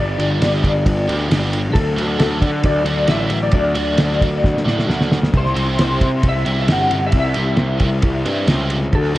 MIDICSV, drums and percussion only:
0, 0, Header, 1, 2, 480
1, 0, Start_track
1, 0, Tempo, 447761
1, 1882, Time_signature, 4, 2, 24, 8
1, 9843, End_track
2, 0, Start_track
2, 0, Title_t, "Drums"
2, 209, Note_on_c, 9, 51, 74
2, 316, Note_off_c, 9, 51, 0
2, 447, Note_on_c, 9, 51, 93
2, 454, Note_on_c, 9, 38, 105
2, 554, Note_off_c, 9, 51, 0
2, 561, Note_off_c, 9, 38, 0
2, 686, Note_on_c, 9, 36, 90
2, 688, Note_on_c, 9, 51, 83
2, 793, Note_off_c, 9, 36, 0
2, 796, Note_off_c, 9, 51, 0
2, 924, Note_on_c, 9, 36, 116
2, 925, Note_on_c, 9, 51, 100
2, 1031, Note_off_c, 9, 36, 0
2, 1032, Note_off_c, 9, 51, 0
2, 1171, Note_on_c, 9, 51, 78
2, 1278, Note_off_c, 9, 51, 0
2, 1408, Note_on_c, 9, 51, 101
2, 1415, Note_on_c, 9, 38, 116
2, 1515, Note_off_c, 9, 51, 0
2, 1522, Note_off_c, 9, 38, 0
2, 1642, Note_on_c, 9, 51, 79
2, 1749, Note_off_c, 9, 51, 0
2, 1878, Note_on_c, 9, 36, 110
2, 1881, Note_on_c, 9, 51, 100
2, 1985, Note_off_c, 9, 36, 0
2, 1988, Note_off_c, 9, 51, 0
2, 2126, Note_on_c, 9, 51, 78
2, 2233, Note_off_c, 9, 51, 0
2, 2354, Note_on_c, 9, 51, 88
2, 2360, Note_on_c, 9, 38, 106
2, 2461, Note_off_c, 9, 51, 0
2, 2467, Note_off_c, 9, 38, 0
2, 2593, Note_on_c, 9, 36, 89
2, 2595, Note_on_c, 9, 51, 85
2, 2700, Note_off_c, 9, 36, 0
2, 2703, Note_off_c, 9, 51, 0
2, 2826, Note_on_c, 9, 51, 92
2, 2831, Note_on_c, 9, 36, 104
2, 2933, Note_off_c, 9, 51, 0
2, 2938, Note_off_c, 9, 36, 0
2, 3065, Note_on_c, 9, 51, 73
2, 3172, Note_off_c, 9, 51, 0
2, 3299, Note_on_c, 9, 51, 98
2, 3306, Note_on_c, 9, 38, 114
2, 3406, Note_off_c, 9, 51, 0
2, 3413, Note_off_c, 9, 38, 0
2, 3537, Note_on_c, 9, 51, 73
2, 3645, Note_off_c, 9, 51, 0
2, 3770, Note_on_c, 9, 51, 88
2, 3785, Note_on_c, 9, 36, 105
2, 3877, Note_off_c, 9, 51, 0
2, 3893, Note_off_c, 9, 36, 0
2, 4022, Note_on_c, 9, 51, 76
2, 4129, Note_off_c, 9, 51, 0
2, 4261, Note_on_c, 9, 51, 90
2, 4268, Note_on_c, 9, 38, 115
2, 4369, Note_off_c, 9, 51, 0
2, 4375, Note_off_c, 9, 38, 0
2, 4407, Note_on_c, 9, 38, 37
2, 4514, Note_off_c, 9, 38, 0
2, 4515, Note_on_c, 9, 36, 85
2, 4522, Note_on_c, 9, 51, 74
2, 4623, Note_off_c, 9, 36, 0
2, 4629, Note_off_c, 9, 51, 0
2, 4760, Note_on_c, 9, 36, 107
2, 4763, Note_on_c, 9, 38, 60
2, 4867, Note_off_c, 9, 36, 0
2, 4871, Note_off_c, 9, 38, 0
2, 4897, Note_on_c, 9, 38, 54
2, 5004, Note_off_c, 9, 38, 0
2, 5010, Note_on_c, 9, 38, 75
2, 5117, Note_off_c, 9, 38, 0
2, 5132, Note_on_c, 9, 38, 67
2, 5239, Note_off_c, 9, 38, 0
2, 5249, Note_on_c, 9, 38, 86
2, 5356, Note_off_c, 9, 38, 0
2, 5368, Note_on_c, 9, 38, 83
2, 5475, Note_off_c, 9, 38, 0
2, 5485, Note_on_c, 9, 38, 104
2, 5592, Note_off_c, 9, 38, 0
2, 5609, Note_on_c, 9, 38, 90
2, 5716, Note_off_c, 9, 38, 0
2, 5719, Note_on_c, 9, 49, 84
2, 5721, Note_on_c, 9, 36, 99
2, 5826, Note_off_c, 9, 49, 0
2, 5828, Note_off_c, 9, 36, 0
2, 5850, Note_on_c, 9, 38, 30
2, 5957, Note_off_c, 9, 38, 0
2, 5965, Note_on_c, 9, 51, 75
2, 6073, Note_off_c, 9, 51, 0
2, 6203, Note_on_c, 9, 51, 103
2, 6209, Note_on_c, 9, 38, 103
2, 6310, Note_off_c, 9, 51, 0
2, 6316, Note_off_c, 9, 38, 0
2, 6444, Note_on_c, 9, 36, 84
2, 6445, Note_on_c, 9, 51, 81
2, 6551, Note_off_c, 9, 36, 0
2, 6552, Note_off_c, 9, 51, 0
2, 6680, Note_on_c, 9, 51, 98
2, 6684, Note_on_c, 9, 36, 111
2, 6787, Note_off_c, 9, 51, 0
2, 6791, Note_off_c, 9, 36, 0
2, 6923, Note_on_c, 9, 51, 74
2, 7031, Note_off_c, 9, 51, 0
2, 7161, Note_on_c, 9, 51, 93
2, 7168, Note_on_c, 9, 38, 112
2, 7268, Note_off_c, 9, 51, 0
2, 7275, Note_off_c, 9, 38, 0
2, 7405, Note_on_c, 9, 51, 75
2, 7512, Note_off_c, 9, 51, 0
2, 7634, Note_on_c, 9, 51, 93
2, 7644, Note_on_c, 9, 36, 108
2, 7741, Note_off_c, 9, 51, 0
2, 7751, Note_off_c, 9, 36, 0
2, 7871, Note_on_c, 9, 51, 71
2, 7979, Note_off_c, 9, 51, 0
2, 8111, Note_on_c, 9, 51, 90
2, 8118, Note_on_c, 9, 38, 111
2, 8218, Note_off_c, 9, 51, 0
2, 8225, Note_off_c, 9, 38, 0
2, 8357, Note_on_c, 9, 51, 75
2, 8366, Note_on_c, 9, 36, 86
2, 8465, Note_off_c, 9, 51, 0
2, 8473, Note_off_c, 9, 36, 0
2, 8601, Note_on_c, 9, 51, 89
2, 8610, Note_on_c, 9, 36, 109
2, 8708, Note_off_c, 9, 51, 0
2, 8717, Note_off_c, 9, 36, 0
2, 8852, Note_on_c, 9, 51, 74
2, 8959, Note_off_c, 9, 51, 0
2, 9086, Note_on_c, 9, 51, 96
2, 9093, Note_on_c, 9, 38, 116
2, 9193, Note_off_c, 9, 51, 0
2, 9200, Note_off_c, 9, 38, 0
2, 9326, Note_on_c, 9, 51, 76
2, 9433, Note_off_c, 9, 51, 0
2, 9568, Note_on_c, 9, 51, 96
2, 9573, Note_on_c, 9, 36, 116
2, 9676, Note_off_c, 9, 51, 0
2, 9680, Note_off_c, 9, 36, 0
2, 9843, End_track
0, 0, End_of_file